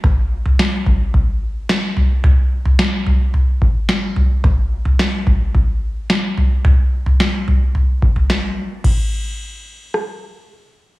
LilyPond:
\new DrumStaff \with { instrumentName = "Drums" } \drummode { \time 4/4 \tempo 4 = 109 <bd tomfh>8. tomfh16 sn8 <bd tomfh>8 <bd tomfh>4 sn8 tomfh8 | tomfh8. tomfh16 sn8 tomfh8 tomfh8 bd8 sn8 tomfh8 | <bd tomfh>8. tomfh16 sn8 <bd tomfh>8 <bd tomfh>4 sn8 tomfh8 | tomfh8. tomfh16 sn8 tomfh8 tomfh8 bd16 tomfh16 sn4 |
<cymc bd>4 r4 ss4 r4 | }